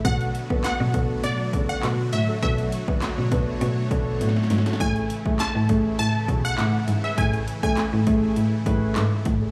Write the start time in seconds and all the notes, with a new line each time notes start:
0.05 B2 D3 F#3 A3 B3 D4 F#4 A4 F#5, kick, closed hi-hat
0.21 closed hi-hat
0.35 closed hi-hat
0.50 A3 B3 D4 F#4 A4, kick
0.64 F#5, snare, clap, closed hi-hat
0.80 B2
0.94 A3 B3 D4 F#4 A4, kick, closed hi-hat
1.24 B2 D5, closed hi-hat
1.53 C#3 A3 B3 D4 F#4 A4, kick, closed hi-hat
1.69 F#5
1.83 B2, snare, clap, closed hi-hat
2.13 A2 E5, closed hi-hat
2.28 F#4 A4
2.42 B2 A3 B3 D4 F#4 A4 C#5 E5, kick, closed hi-hat
2.58 closed hi-hat
2.72 closed hi-hat
2.88 A3 B3 D4 F#4 A4, kick
3.02 snare, clap, closed hi-hat
3.18 B2
3.32 A3 B3 D4 F#4 A4, kick, closed hi-hat
3.61 B2, closed hi-hat
3.91 B2 A3 B3 D4 F#4 A4, kick, closed hi-hat
4.21 A2, snare, closed hi-hat
4.29 snare
4.36 snare
4.43 snare
4.50 G#2, snare, closed hi-hat
4.58 snare
4.66 F#4 A4, snare, closed hi-hat
4.73 snare
4.80 A2 C#3 E3 A3 C#4 E4 G#4 A4 G#5, kick, closed hi-hat
4.96 closed hi-hat
5.10 closed hi-hat
5.25 A3 C#4 E4 G#4 A4, kick
5.39 A5, snare, clap, closed hi-hat
5.55 A2
5.69 A3 C#4 E4 G#4 A4, kick, closed hi-hat
5.99 A2 A5, closed hi-hat
6.28 B2 A3 C#4 E4 G#4 A4, kick, closed hi-hat
6.45 F#5
6.58 A2, snare, clap, closed hi-hat
6.88 G#2, closed hi-hat
7.04 G#4 B4 E5
7.17 A2 A3 C#4 E4 G#4 A4 G#5, kick, closed hi-hat
7.33 closed hi-hat
7.48 closed hi-hat
7.63 A3 C#4 E4 G#4 A4 G#5, kick
7.77 snare, clap, closed hi-hat
7.93 A2
8.07 A3 C#4 E4 G#4 A4, kick, closed hi-hat
8.36 A2, closed hi-hat
8.66 A2 A3 C#4 E4 G#4 B4, kick, closed hi-hat
8.96 G#2, snare, clap, closed hi-hat
9.25 A2, kick, closed hi-hat
9.41 G#4 A4